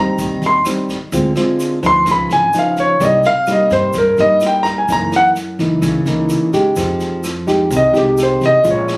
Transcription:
Already playing: upright bass D#2, nylon-string guitar G#2 G3 C4 D#4, grand piano A#5
0.18 upright bass D#2, nylon-string guitar D#3, kick, snare, shaker
0.42 upright bass D#2, snare, shaker
0.46 grand piano C6
0.65 nylon-string guitar G3 C4 D#4, cross-stick, snare, shaker
0.89 kick, snare, shaker
1.12 upright bass D2, nylon-string guitar D3 G#3 C4 F4, kick, snare, shaker
1.36 nylon-string guitar G#3 C4 F4, cross-stick, snare, shaker
1.59 snare, shaker
1.83 upright bass D2, nylon-string guitar F3 B3 D#4, grand piano C6, kick, snare, shaker
2.06 upright bass C#2, nylon-string guitar C#3, kick, cross-stick, snare, shaker
2.11 grand piano B5
2.29 upright bass G#1, grand piano G#5, snare, shaker
2.53 nylon-string guitar F3 B3 D#4, snare, shaker
2.59 grand piano F5
2.77 grand piano C#5, kick, snare, shaker
3.00 upright bass C2, nylon-string guitar C3 G3 A#3 D#4, grand piano D5, kick, cross-stick, snare, shaker
3.05 grand piano D#5
3.23 grand piano F5, snare, shaker
3.46 nylon-string guitar G3 A#3 D#4, cross-stick, snare, shaker
3.52 grand piano D#5
3.70 upright bass G2, grand piano C5, kick, snare, shaker
3.93 upright bass G2, nylon-string guitar G2, kick, snare, shaker
3.98 grand piano A#4
4.17 upright bass G2, nylon-string guitar G3 A#3 D#4, grand piano D#5, snare, shaker
4.40 cross-stick, snare, shaker
4.46 grand piano G5
4.63 grand piano A#5, kick, snare, shaker
4.78 grand piano G#5
4.88 upright bass F#1, nylon-string guitar F#2 E3 A#3 D#4, kick, snare, shaker
4.92 grand piano A#5
5.12 cross-stick, snare, shaker
5.16 grand piano F#5
5.35 snare, shaker
5.59 upright bass C#2, nylon-string guitar E3 A#3 D#4, kick, snare, shaker
5.82 upright bass C#2, nylon-string guitar C#3, kick, cross-stick, snare, shaker
6.06 upright bass C#2, nylon-string guitar E3 A#3 D#4, snare, shaker
6.29 snare, shaker
6.53 nylon-string guitar G#3 D#4 G4, kick, snare, shaker
6.76 upright bass F2, nylon-string guitar F3, kick, cross-stick, snare, shaker
7.00 snare, shaker
7.23 cross-stick, snare, shaker
7.47 nylon-string guitar G#3 D#4 G4, kick, snare, shaker
7.70 upright bass C2, nylon-string guitar C3, kick, snare, shaker
7.77 grand piano D#5
7.93 upright bass C2, nylon-string guitar G#3 D#4 G4, snare, shaker
7.98 grand piano G4
8.17 cross-stick, snare, shaker
8.23 grand piano C5
8.41 upright bass C2, kick, snare, shaker
8.46 grand piano D#5
8.64 upright bass A#1, nylon-string guitar A#2 G#3 C#4 F4, kick, snare, shaker
8.70 grand piano C#5
8.88 cross-stick, snare, shaker

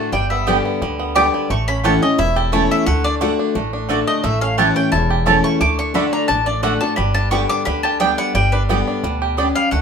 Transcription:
Already playing: steel-string acoustic guitar D3 A3 D4 F#4, five-string banjo A3 D4, mandolin A5
0.12 upright bass G1, steel-string acoustic guitar G2, five-string banjo G3, mandolin G5
0.30 five-string banjo B3, mandolin E5
0.47 steel-string acoustic guitar D3 G3 B3 G4, mandolin B3 G4 D5 G5, five-string banjo G4
0.65 five-string banjo B3
0.82 upright bass D2, steel-string acoustic guitar D3, five-string banjo G3
0.99 five-string banjo B3
1.15 steel-string acoustic guitar D3 G3 B3 G4, mandolin B3 G4 D5 G5 D6, five-string banjo G4
1.34 five-string banjo G3
1.50 upright bass A1, steel-string acoustic guitar A2, five-string banjo A3, mandolin C#6
1.68 five-string banjo C#4, mandolin B5
1.84 steel-string acoustic guitar E3 A3 C#4 E4, mandolin A3 E4 C#5 F#5 A5, five-string banjo G4
2.02 five-string banjo C#4, steel-string acoustic guitar C#4 E4, mandolin D#5
2.18 upright bass E1, steel-string acoustic guitar E2, five-string banjo E4, mandolin E5
2.36 five-string banjo G4, mandolin A4
2.52 steel-string acoustic guitar E3 A3 C#4 E4, mandolin A3 E4 C#5 A5, five-string banjo C#4
2.71 five-string banjo A3, mandolin E5
2.86 upright bass D2, steel-string acoustic guitar D3, five-string banjo A3, mandolin F#5
3.04 five-string banjo D4, mandolin D5
3.21 steel-string acoustic guitar D3 A3 D4 F#4, mandolin A3 F#4 D5 F#5, five-string banjo D4
3.39 five-string banjo D4
3.55 upright bass A1, steel-string acoustic guitar A2, five-string banjo A3
3.73 five-string banjo D4
3.89 steel-string acoustic guitar D3 A3 D4 F#4, mandolin A3 F#4 D5 F#5, five-string banjo D4
4.07 five-string banjo A3, mandolin D#5
4.24 upright bass A1, steel-string acoustic guitar A2, five-string banjo A3, mandolin E5
4.41 five-string banjo C#4, mandolin F5
4.58 steel-string acoustic guitar E3 A3 C#4 E4, mandolin A3 E4 C#5 F#5 A5, five-string banjo G4
4.76 five-string banjo C#4, mandolin G5
4.92 upright bass E1, steel-string acoustic guitar E2, five-string banjo E4, mandolin A5
5.10 five-string banjo G4
5.26 steel-string acoustic guitar E3 A3 C#4 E4, mandolin A3 E4 C#5 A5, five-string banjo C#4
5.44 five-string banjo A3, mandolin C#6
5.61 upright bass D2, steel-string acoustic guitar D3, five-string banjo A3, mandolin D6
5.79 five-string banjo D4, mandolin C#6
5.94 steel-string acoustic guitar D3 A3 D4 F#4, mandolin A3 F#4 D5 F#5 B5, five-string banjo A3
6.13 five-string banjo D4, mandolin A#5
6.28 upright bass A1, steel-string acoustic guitar A2, five-string banjo D4, mandolin A5
6.46 five-string banjo D4, mandolin D5
6.63 steel-string acoustic guitar D3 A3 D4 F#4, mandolin A3 F#4 D5 F#5, five-string banjo A3
6.81 five-string banjo D4, steel-string acoustic guitar D4 F#4, mandolin A5
6.96 upright bass G1, steel-string acoustic guitar G2, five-string banjo G3, mandolin B5
7.14 five-string banjo D4, mandolin A5
7.31 steel-string acoustic guitar D3 G3 B3 G4, mandolin B3 G4 D5 G5 C#6, five-string banjo B3
7.49 five-string banjo D4, mandolin D6
7.65 upright bass D2, steel-string acoustic guitar D3, five-string banjo G3, mandolin B5
7.83 five-string banjo G4, mandolin A5
8.00 steel-string acoustic guitar D3 G3 B3 G4, mandolin B3 G4 D5 G5, five-string banjo D4
8.18 five-string banjo G3, mandolin F#5
8.34 upright bass G1, steel-string acoustic guitar G2, five-string banjo G3, mandolin G5
8.52 five-string banjo D4, mandolin B4
8.69 steel-string acoustic guitar D3 G3 B3 G4, mandolin B3 G4 D5 G5, five-string banjo B3
8.87 five-string banjo D4
9.04 upright bass D2, steel-string acoustic guitar B2, five-string banjo G3
9.22 five-string banjo G4
9.37 mandolin B3 G4 D5 G5, steel-string acoustic guitar C#4, five-string banjo D4
9.55 five-string banjo G3, mandolin F5
9.71 upright bass D2, steel-string acoustic guitar D3, five-string banjo A3, mandolin F#5

